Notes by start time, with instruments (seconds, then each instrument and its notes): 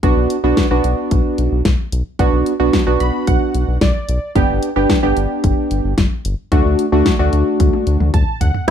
0.03 analog synth bass B1, synth keys B3 D4 F#4, kick, closed hi-hat
0.17 analog synth bass B1
0.30 closed hi-hat
0.44 analog synth bass B1, synth keys B3 D4 F#4
0.57 kick, snare, closed hi-hat
0.71 analog synth bass B1, synth keys B3 D4 F#4
0.84 analog synth bass B1, closed hi-hat
1.11 analog synth bass B1, kick, closed hi-hat
1.38 analog synth bass B1, closed hi-hat
1.52 analog synth bass B1
1.65 analog synth bass B1, kick, snare, closed hi-hat
1.92 analog synth bass B1, closed hi-hat
2.19 analog synth bass B1, synth keys B3 D4 F#4, kick, closed hi-hat
2.33 analog synth bass B1
2.46 closed hi-hat
2.60 analog synth bass B1, synth keys B3 D4 F#4
2.73 kick, snare, closed hi-hat
2.87 analog synth bass B1, synth keys B3 D4 F#4
3.00 analog synth bass B1, synth keys B5, closed hi-hat
3.27 analog synth bass B1, synth keys F#5, kick, closed hi-hat
3.55 analog synth bass B1, closed hi-hat
3.68 analog synth bass B1
3.81 analog synth bass B1, synth keys D5, kick, snare, closed hi-hat
4.09 analog synth bass B1, closed hi-hat
4.35 analog synth bass G1, synth keys B3 D4 G4, kick, closed hi-hat
4.49 analog synth bass G1
4.63 closed hi-hat
4.76 analog synth bass G1, synth keys B3 D4 G4
4.90 kick, snare, closed hi-hat
5.03 analog synth bass G1, synth keys B3 D4 G4
5.17 analog synth bass G1, closed hi-hat
5.44 analog synth bass G1, kick, closed hi-hat
5.71 analog synth bass G1, closed hi-hat
5.84 analog synth bass G1
5.98 analog synth bass G1, kick, snare, closed hi-hat
6.25 analog synth bass G1, closed hi-hat
6.52 analog synth bass D2, synth keys A3 D4 F#4, kick, closed hi-hat
6.65 analog synth bass D2
6.79 closed hi-hat
6.92 analog synth bass D2, synth keys A3 D4 F#4
7.06 kick, snare, closed hi-hat
7.19 analog synth bass D2, synth keys A3 D4 F#4
7.33 analog synth bass D2, closed hi-hat
7.60 analog synth bass D2, kick, closed hi-hat, high tom
7.73 high tom
7.87 analog synth bass D2, closed hi-hat
8.00 analog synth bass D2, mid tom
8.14 analog synth bass D2, synth keys A5, kick, closed hi-hat, mid tom
8.41 analog synth bass D2, synth keys F#5, closed hi-hat, floor tom
8.54 floor tom